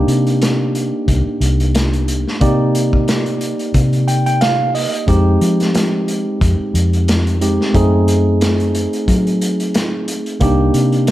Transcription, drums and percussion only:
0.08 closed hi-hat
0.27 closed hi-hat
0.42 snare, closed hi-hat
0.75 closed hi-hat
1.08 kick, closed hi-hat
1.41 closed hi-hat
1.60 closed hi-hat
1.75 snare, closed hi-hat
1.93 closed hi-hat
2.08 closed hi-hat
2.28 snare
2.41 kick, closed hi-hat
2.75 closed hi-hat
2.93 kick
3.08 snare, closed hi-hat
3.26 closed hi-hat
3.41 closed hi-hat
3.59 closed hi-hat
3.74 kick, closed hi-hat
3.93 closed hi-hat
4.08 closed hi-hat
4.26 closed hi-hat
4.41 snare, closed hi-hat
4.75 open hi-hat
4.93 closed hi-hat
5.08 kick, closed hi-hat
5.41 closed hi-hat
5.60 snare, closed hi-hat
5.75 snare, closed hi-hat
6.08 closed hi-hat
6.41 kick, closed hi-hat
6.75 closed hi-hat
6.93 closed hi-hat
7.08 snare, closed hi-hat
7.27 closed hi-hat
7.42 closed hi-hat
7.61 snare
7.75 kick, closed hi-hat
8.08 closed hi-hat
8.41 snare, closed hi-hat
8.60 closed hi-hat
8.75 closed hi-hat
8.93 closed hi-hat
9.08 kick, closed hi-hat
9.27 closed hi-hat
9.41 closed hi-hat
9.60 closed hi-hat
9.74 snare, closed hi-hat
10.08 closed hi-hat
10.26 closed hi-hat
10.41 kick, closed hi-hat
10.74 closed hi-hat
10.92 closed hi-hat
11.07 closed hi-hat

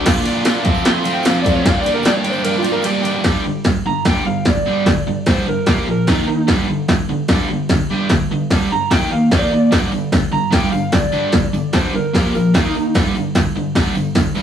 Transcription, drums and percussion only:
0.06 kick, snare, crash
0.25 ride, tambourine
0.35 tambourine
0.45 snare, ride, tambourine
0.65 kick, ride
0.74 tambourine
0.85 snare, ride
0.94 tambourine
1.04 ride, tambourine
1.23 snare, ride, tambourine
1.44 kick, ride, tambourine
1.64 kick, snare, ride, tambourine
1.74 tambourine
1.83 ride, tambourine
1.94 tambourine
2.03 snare, ride, tambourine
2.13 tambourine
2.23 ride, tambourine
2.33 tambourine
2.45 ride
2.54 tambourine
2.62 ride, tambourine
2.73 tambourine
2.82 ride, tambourine
3.03 ride, tambourine
3.24 kick, snare, crash
3.64 kick, snare, crash
4.05 kick, snare, crash
4.45 kick, snare, crash
4.86 kick, snare, crash
5.26 kick, snare, crash
5.66 kick, snare, crash
6.07 kick, snare, crash
6.48 kick, snare, crash
6.88 kick, snare, crash
7.28 kick, snare, crash
7.69 kick, snare, crash
8.09 kick, snare, crash
8.50 kick, snare, crash
8.91 kick, snare, crash
9.31 kick, snare, crash
9.72 kick, snare, tambourine, crash
9.92 tambourine
10.12 kick, snare, tambourine, crash
10.33 tambourine
10.52 kick, snare, crash
10.73 tambourine
10.92 kick, snare, tambourine, crash
11.12 tambourine
11.32 kick, snare, tambourine, crash
11.54 tambourine
11.73 kick, snare, tambourine, crash
11.95 tambourine
12.15 kick, snare, crash
12.35 tambourine
12.54 kick, snare, tambourine, crash
12.75 tambourine
12.94 kick, snare, tambourine, crash
13.15 tambourine
13.35 kick, snare, tambourine, crash
13.56 tambourine
13.75 kick, snare, crash
13.95 tambourine
14.15 kick, snare, tambourine, crash
14.35 tambourine

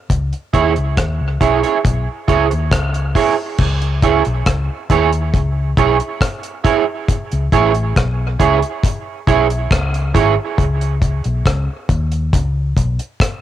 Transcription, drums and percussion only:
0.10 kick, closed hi-hat
0.33 closed hi-hat
0.53 kick, closed hi-hat
0.76 closed hi-hat
0.97 kick, cross-stick, closed hi-hat
1.41 kick, closed hi-hat
1.63 closed hi-hat
1.84 kick, closed hi-hat
2.28 kick, closed hi-hat
2.51 closed hi-hat
2.72 kick, cross-stick, closed hi-hat
2.94 closed hi-hat
3.15 kick, open hi-hat
3.59 kick, crash
3.82 closed hi-hat
4.03 kick, closed hi-hat
4.25 closed hi-hat
4.46 kick, cross-stick, closed hi-hat
4.90 kick, closed hi-hat
5.13 closed hi-hat
5.34 kick, closed hi-hat
5.77 kick, closed hi-hat
6.00 closed hi-hat
6.21 kick, cross-stick, closed hi-hat
6.43 closed hi-hat
6.65 kick, closed hi-hat
7.08 kick, closed hi-hat
7.31 closed hi-hat
7.52 kick, closed hi-hat
7.74 closed hi-hat
7.96 kick, cross-stick, closed hi-hat
8.40 kick, closed hi-hat
8.62 closed hi-hat
8.83 kick, closed hi-hat
9.27 kick, closed hi-hat
9.50 closed hi-hat
9.71 kick, cross-stick, closed hi-hat
9.94 closed hi-hat
10.15 kick, closed hi-hat
10.58 kick, closed hi-hat
10.81 closed hi-hat
11.02 kick, closed hi-hat
11.24 closed hi-hat
11.46 kick, cross-stick, closed hi-hat
11.89 kick, closed hi-hat
12.12 closed hi-hat
12.33 kick, closed hi-hat
12.77 kick, closed hi-hat
12.99 closed hi-hat
13.20 kick, cross-stick, closed hi-hat

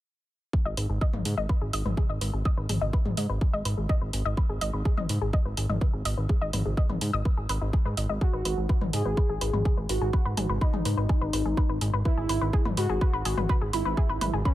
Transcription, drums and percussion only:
0.53 kick
0.77 open hi-hat
1.01 kick
1.13 mid tom
1.25 open hi-hat
1.49 kick
1.73 open hi-hat
1.85 mid tom
1.97 kick
2.21 open hi-hat
2.45 kick
2.69 open hi-hat, mid tom
2.93 kick
3.05 mid tom
3.17 open hi-hat
3.41 kick
3.65 open hi-hat
3.89 kick
4.13 open hi-hat
4.37 kick
4.61 open hi-hat
4.85 kick
4.97 mid tom
5.09 open hi-hat
5.33 kick
5.57 open hi-hat
5.69 mid tom
5.81 kick
6.05 open hi-hat
6.29 kick
6.53 open hi-hat, mid tom
6.77 kick
6.89 mid tom
7.01 open hi-hat
7.25 kick
7.49 open hi-hat
7.73 kick
7.97 open hi-hat
8.21 kick
8.45 open hi-hat
8.69 kick
8.81 mid tom
8.93 open hi-hat
9.17 kick
9.41 open hi-hat
9.53 mid tom
9.65 kick
9.89 open hi-hat
10.13 kick
10.37 open hi-hat, mid tom
10.61 kick
10.73 mid tom
10.85 open hi-hat
11.09 kick
11.33 open hi-hat
11.57 kick
11.81 open hi-hat
12.05 kick
12.29 open hi-hat
12.53 kick
12.65 mid tom
12.77 open hi-hat
13.01 kick
13.25 open hi-hat
13.37 mid tom
13.49 kick
13.73 open hi-hat
13.97 kick
14.21 open hi-hat, mid tom
14.45 kick

